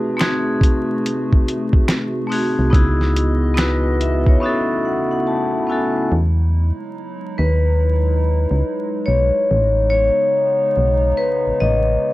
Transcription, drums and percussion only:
0, 0, Header, 1, 2, 480
1, 0, Start_track
1, 0, Key_signature, 4, "major"
1, 0, Tempo, 845070
1, 1550, Time_signature, 4, 2, 24, 8
1, 6892, End_track
2, 0, Start_track
2, 0, Title_t, "Drums"
2, 110, Note_on_c, 9, 26, 72
2, 117, Note_off_c, 9, 26, 0
2, 117, Note_on_c, 9, 26, 86
2, 118, Note_on_c, 9, 42, 83
2, 120, Note_on_c, 9, 38, 110
2, 174, Note_off_c, 9, 26, 0
2, 175, Note_off_c, 9, 42, 0
2, 176, Note_off_c, 9, 38, 0
2, 347, Note_on_c, 9, 36, 92
2, 360, Note_on_c, 9, 42, 69
2, 404, Note_off_c, 9, 36, 0
2, 417, Note_off_c, 9, 42, 0
2, 602, Note_on_c, 9, 42, 81
2, 659, Note_off_c, 9, 42, 0
2, 753, Note_on_c, 9, 36, 83
2, 810, Note_off_c, 9, 36, 0
2, 843, Note_on_c, 9, 42, 67
2, 899, Note_off_c, 9, 42, 0
2, 983, Note_on_c, 9, 36, 92
2, 1040, Note_off_c, 9, 36, 0
2, 1069, Note_on_c, 9, 26, 94
2, 1071, Note_off_c, 9, 26, 0
2, 1071, Note_on_c, 9, 26, 63
2, 1072, Note_on_c, 9, 38, 113
2, 1079, Note_on_c, 9, 42, 74
2, 1128, Note_off_c, 9, 26, 0
2, 1129, Note_off_c, 9, 38, 0
2, 1135, Note_off_c, 9, 42, 0
2, 1317, Note_on_c, 9, 46, 44
2, 1373, Note_off_c, 9, 46, 0
2, 1550, Note_on_c, 9, 36, 127
2, 1558, Note_on_c, 9, 42, 71
2, 1607, Note_off_c, 9, 36, 0
2, 1615, Note_off_c, 9, 42, 0
2, 1710, Note_on_c, 9, 38, 35
2, 1767, Note_off_c, 9, 38, 0
2, 1797, Note_on_c, 9, 42, 69
2, 1854, Note_off_c, 9, 42, 0
2, 2029, Note_on_c, 9, 26, 71
2, 2033, Note_off_c, 9, 26, 0
2, 2033, Note_on_c, 9, 26, 90
2, 2034, Note_on_c, 9, 42, 84
2, 2036, Note_on_c, 9, 38, 107
2, 2090, Note_off_c, 9, 26, 0
2, 2091, Note_off_c, 9, 42, 0
2, 2093, Note_off_c, 9, 38, 0
2, 2277, Note_on_c, 9, 42, 64
2, 2333, Note_off_c, 9, 42, 0
2, 2422, Note_on_c, 9, 36, 92
2, 2479, Note_off_c, 9, 36, 0
2, 6892, End_track
0, 0, End_of_file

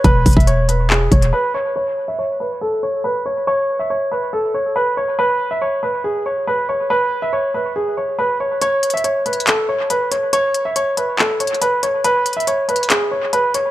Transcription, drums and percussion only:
0, 0, Header, 1, 2, 480
1, 0, Start_track
1, 0, Tempo, 428571
1, 49, Time_signature, 4, 2, 24, 8
1, 15354, End_track
2, 0, Start_track
2, 0, Title_t, "Drums"
2, 49, Note_on_c, 9, 36, 121
2, 49, Note_on_c, 9, 42, 88
2, 161, Note_off_c, 9, 36, 0
2, 161, Note_off_c, 9, 42, 0
2, 290, Note_on_c, 9, 36, 102
2, 290, Note_on_c, 9, 42, 64
2, 290, Note_on_c, 9, 46, 81
2, 370, Note_off_c, 9, 42, 0
2, 370, Note_on_c, 9, 42, 64
2, 402, Note_off_c, 9, 36, 0
2, 402, Note_off_c, 9, 46, 0
2, 410, Note_on_c, 9, 36, 99
2, 450, Note_off_c, 9, 42, 0
2, 450, Note_on_c, 9, 42, 61
2, 522, Note_off_c, 9, 36, 0
2, 531, Note_off_c, 9, 42, 0
2, 531, Note_on_c, 9, 42, 80
2, 643, Note_off_c, 9, 42, 0
2, 771, Note_on_c, 9, 42, 84
2, 883, Note_off_c, 9, 42, 0
2, 1011, Note_on_c, 9, 39, 119
2, 1123, Note_off_c, 9, 39, 0
2, 1250, Note_on_c, 9, 36, 89
2, 1250, Note_on_c, 9, 42, 63
2, 1362, Note_off_c, 9, 36, 0
2, 1362, Note_off_c, 9, 42, 0
2, 1371, Note_on_c, 9, 42, 64
2, 1483, Note_off_c, 9, 42, 0
2, 9649, Note_on_c, 9, 42, 84
2, 9761, Note_off_c, 9, 42, 0
2, 9889, Note_on_c, 9, 42, 72
2, 9969, Note_off_c, 9, 42, 0
2, 9969, Note_on_c, 9, 42, 61
2, 10050, Note_off_c, 9, 42, 0
2, 10050, Note_on_c, 9, 42, 43
2, 10129, Note_off_c, 9, 42, 0
2, 10129, Note_on_c, 9, 42, 78
2, 10241, Note_off_c, 9, 42, 0
2, 10369, Note_on_c, 9, 42, 46
2, 10449, Note_off_c, 9, 42, 0
2, 10449, Note_on_c, 9, 42, 61
2, 10530, Note_off_c, 9, 42, 0
2, 10530, Note_on_c, 9, 42, 79
2, 10609, Note_off_c, 9, 42, 0
2, 10609, Note_on_c, 9, 42, 82
2, 10610, Note_on_c, 9, 39, 116
2, 10721, Note_off_c, 9, 42, 0
2, 10722, Note_off_c, 9, 39, 0
2, 11089, Note_on_c, 9, 42, 75
2, 11201, Note_off_c, 9, 42, 0
2, 11330, Note_on_c, 9, 42, 91
2, 11442, Note_off_c, 9, 42, 0
2, 11570, Note_on_c, 9, 42, 87
2, 11682, Note_off_c, 9, 42, 0
2, 11810, Note_on_c, 9, 42, 75
2, 11922, Note_off_c, 9, 42, 0
2, 12050, Note_on_c, 9, 42, 80
2, 12162, Note_off_c, 9, 42, 0
2, 12290, Note_on_c, 9, 42, 81
2, 12402, Note_off_c, 9, 42, 0
2, 12531, Note_on_c, 9, 39, 117
2, 12643, Note_off_c, 9, 39, 0
2, 12770, Note_on_c, 9, 42, 73
2, 12850, Note_off_c, 9, 42, 0
2, 12850, Note_on_c, 9, 42, 58
2, 12930, Note_off_c, 9, 42, 0
2, 12930, Note_on_c, 9, 42, 45
2, 13010, Note_off_c, 9, 42, 0
2, 13010, Note_on_c, 9, 42, 81
2, 13122, Note_off_c, 9, 42, 0
2, 13250, Note_on_c, 9, 42, 91
2, 13362, Note_off_c, 9, 42, 0
2, 13490, Note_on_c, 9, 42, 86
2, 13602, Note_off_c, 9, 42, 0
2, 13729, Note_on_c, 9, 42, 73
2, 13810, Note_off_c, 9, 42, 0
2, 13810, Note_on_c, 9, 42, 60
2, 13890, Note_off_c, 9, 42, 0
2, 13890, Note_on_c, 9, 42, 42
2, 13970, Note_off_c, 9, 42, 0
2, 13970, Note_on_c, 9, 42, 79
2, 14082, Note_off_c, 9, 42, 0
2, 14210, Note_on_c, 9, 42, 47
2, 14290, Note_off_c, 9, 42, 0
2, 14290, Note_on_c, 9, 42, 65
2, 14370, Note_off_c, 9, 42, 0
2, 14370, Note_on_c, 9, 42, 81
2, 14450, Note_off_c, 9, 42, 0
2, 14450, Note_on_c, 9, 39, 117
2, 14450, Note_on_c, 9, 42, 83
2, 14562, Note_off_c, 9, 39, 0
2, 14562, Note_off_c, 9, 42, 0
2, 14930, Note_on_c, 9, 42, 79
2, 15042, Note_off_c, 9, 42, 0
2, 15169, Note_on_c, 9, 42, 93
2, 15281, Note_off_c, 9, 42, 0
2, 15354, End_track
0, 0, End_of_file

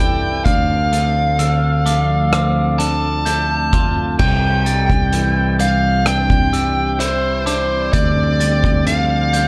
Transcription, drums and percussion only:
0, 0, Header, 1, 2, 480
1, 0, Start_track
1, 0, Key_signature, 0, "major"
1, 0, Tempo, 934579
1, 233, Time_signature, 4, 2, 24, 8
1, 4868, End_track
2, 0, Start_track
2, 0, Title_t, "Drums"
2, 235, Note_on_c, 9, 36, 70
2, 236, Note_on_c, 9, 42, 51
2, 286, Note_off_c, 9, 36, 0
2, 288, Note_off_c, 9, 42, 0
2, 477, Note_on_c, 9, 42, 41
2, 528, Note_off_c, 9, 42, 0
2, 714, Note_on_c, 9, 42, 57
2, 766, Note_off_c, 9, 42, 0
2, 957, Note_on_c, 9, 42, 38
2, 1009, Note_off_c, 9, 42, 0
2, 1195, Note_on_c, 9, 37, 73
2, 1195, Note_on_c, 9, 42, 54
2, 1247, Note_off_c, 9, 37, 0
2, 1247, Note_off_c, 9, 42, 0
2, 1437, Note_on_c, 9, 42, 44
2, 1488, Note_off_c, 9, 42, 0
2, 1675, Note_on_c, 9, 42, 52
2, 1727, Note_off_c, 9, 42, 0
2, 1916, Note_on_c, 9, 36, 64
2, 1916, Note_on_c, 9, 42, 39
2, 1967, Note_off_c, 9, 36, 0
2, 1967, Note_off_c, 9, 42, 0
2, 2152, Note_on_c, 9, 49, 61
2, 2155, Note_on_c, 9, 36, 74
2, 2204, Note_off_c, 9, 49, 0
2, 2206, Note_off_c, 9, 36, 0
2, 2395, Note_on_c, 9, 42, 45
2, 2446, Note_off_c, 9, 42, 0
2, 2515, Note_on_c, 9, 36, 52
2, 2566, Note_off_c, 9, 36, 0
2, 2633, Note_on_c, 9, 42, 59
2, 2684, Note_off_c, 9, 42, 0
2, 2874, Note_on_c, 9, 42, 44
2, 2925, Note_off_c, 9, 42, 0
2, 3112, Note_on_c, 9, 37, 71
2, 3112, Note_on_c, 9, 42, 58
2, 3163, Note_off_c, 9, 37, 0
2, 3163, Note_off_c, 9, 42, 0
2, 3235, Note_on_c, 9, 36, 58
2, 3287, Note_off_c, 9, 36, 0
2, 3357, Note_on_c, 9, 42, 47
2, 3408, Note_off_c, 9, 42, 0
2, 3596, Note_on_c, 9, 42, 57
2, 3647, Note_off_c, 9, 42, 0
2, 3837, Note_on_c, 9, 42, 47
2, 3888, Note_off_c, 9, 42, 0
2, 4075, Note_on_c, 9, 36, 74
2, 4075, Note_on_c, 9, 42, 57
2, 4126, Note_off_c, 9, 42, 0
2, 4127, Note_off_c, 9, 36, 0
2, 4317, Note_on_c, 9, 42, 48
2, 4369, Note_off_c, 9, 42, 0
2, 4436, Note_on_c, 9, 36, 61
2, 4488, Note_off_c, 9, 36, 0
2, 4554, Note_on_c, 9, 42, 58
2, 4605, Note_off_c, 9, 42, 0
2, 4795, Note_on_c, 9, 42, 39
2, 4846, Note_off_c, 9, 42, 0
2, 4868, End_track
0, 0, End_of_file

